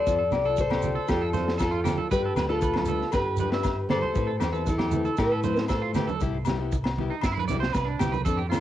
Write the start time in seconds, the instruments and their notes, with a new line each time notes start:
Already playing: steel-string acoustic guitar A4 D5, clean electric guitar C5
0.07 fingered electric bass F2, nylon-string guitar C4 F4 A4, kick, snare, shekere
0.19 clean electric guitar A4
0.31 fingered electric bass C2, clean electric guitar G4, snare, high conga, low agogo, shekere
0.45 clean electric guitar A4, nylon-string guitar A4
0.50 nylon-string guitar F4
0.57 steel-string acoustic guitar A4 C5, kick, shekere
0.70 clean electric guitar G4, snare, high conga, low agogo
0.82 nylon-string guitar C4 F4, low conga, shekere
0.87 nylon-string guitar A4
0.95 clean electric guitar A4
1.08 fingered electric bass F2, steel-string acoustic guitar F4 A4, clean electric guitar G4, kick, snare, low agogo, shekere
1.22 clean electric guitar A4
1.33 nylon-string guitar C4 F4 A4, clean electric guitar C5, snare, high conga, shekere
1.48 nylon-string guitar F4 A4, snare
1.58 steel-string acoustic guitar F4 A4, clean electric guitar A4, kick, snare, low agogo, shekere
1.71 clean electric guitar F4
1.84 nylon-string guitar C4 A4, clean electric guitar G4, muted nylon-string guitar stroke, snare, low conga, low agogo, shekere
1.97 clean electric guitar A4, high conga
2.11 fingered electric bass G2, nylon-string guitar G3 D4 G4 B4, steel-string acoustic guitar G4 B4, clean electric guitar B4, kick, snare, shekere
2.25 clean electric guitar A4
2.35 fingered electric bass D2, clean electric guitar B4, snare, high conga, low agogo, shekere
2.49 nylon-string guitar D4 G4 B4, steel-string acoustic guitar F4 A4, clean electric guitar A4
2.61 clean electric guitar B4, kick, shekere
2.74 snare, high conga, low agogo
2.85 nylon-string guitar G3 D4, clean electric guitar A4, low conga, shekere
2.89 nylon-string guitar B4, muted nylon-string guitar stroke
3.01 snare
3.12 fingered electric bass G2, steel-string acoustic guitar G4 B4, clean electric guitar B4, kick, snare, low agogo, shekere
3.37 nylon-string guitar G3 D4, clean electric guitar B4, high conga, shekere
3.41 nylon-string guitar G4 B4
3.52 nylon-string guitar D4 G4 B4, clean electric guitar E5, snare
3.63 kick, snare, low agogo, shekere
3.89 nylon-string guitar G3 D4 G4 B4, steel-string acoustic guitar A4 C5, clean electric guitar D5, snare, low conga, low agogo
4.02 clean electric guitar C5, high conga
4.14 fingered electric bass A2, nylon-string guitar A3 C4 E4 B4, kick, shekere
4.27 clean electric guitar A4
4.40 fingered electric bass E2, clean electric guitar G4, snare, high conga, low agogo, shekere
4.52 nylon-string guitar C4 E4 B4, clean electric guitar A4, shekere
4.66 steel-string acoustic guitar E4 A4, kick, snare, shekere
4.78 clean electric guitar G4, snare, high conga, low agogo
4.91 nylon-string guitar A3 C4 E4 B4, low conga, shekere
5.05 clean electric guitar A4, shekere
5.17 fingered electric bass A2, steel-string acoustic guitar E4 B4, clean electric guitar G4, kick, snare, low agogo, shekere
5.32 clean electric guitar A4
5.43 nylon-string guitar A3 C4 E4 B4, clean electric guitar C5, high conga, shekere
5.56 nylon-string guitar C4 E4 B4, snare, shekere
5.68 clean electric guitar A4, steel-string acoustic guitar A4 C5, kick, snare, low agogo, shekere
5.81 clean electric guitar F4
5.93 nylon-string guitar A3 C4 E4 B4, clean electric guitar G4, snare, low conga, low agogo, shekere
6.07 clean electric guitar A4, high conga, shekere
6.20 fingered electric bass C2, nylon-string guitar G3 B3 E4 G4, kick, shekere
6.45 nylon-string guitar G3 B3 E4, snare, low conga, low agogo, shekere
6.50 nylon-string guitar G4
6.61 nylon-string guitar B3 E4 G4
6.72 kick, shekere
6.84 snare, low agogo
6.98 nylon-string guitar G3 B3 E4 G4, low conga
7.10 clean electric guitar D#4
7.21 fingered electric bass G2, clean electric guitar E4, kick, snare, low agogo, shekere
7.32 clean electric guitar E4
7.37 clean electric guitar B4, high conga
7.48 fingered electric bass C2, nylon-string guitar G3 B3 E4 G4, clean electric guitar D5, snare, high conga, shekere
7.60 clean electric guitar C5, snare
7.73 fingered electric bass C2, clean electric guitar B4, kick, snare, low agogo, shekere
7.85 clean electric guitar D4
7.99 fingered electric bass C2, nylon-string guitar G3 B3 E4 G4, clean electric guitar G4, snare, low conga, low agogo, shekere
8.12 clean electric guitar B4, high conga, shekere
8.25 fingered electric bass F2, nylon-string guitar F3 C4 D4 A4, clean electric guitar A4, kick, shekere
8.37 clean electric guitar G4
8.50 nylon-string guitar F3 C4 D4, clean electric guitar F4, snare, low conga, low agogo, shekere
8.54 nylon-string guitar A4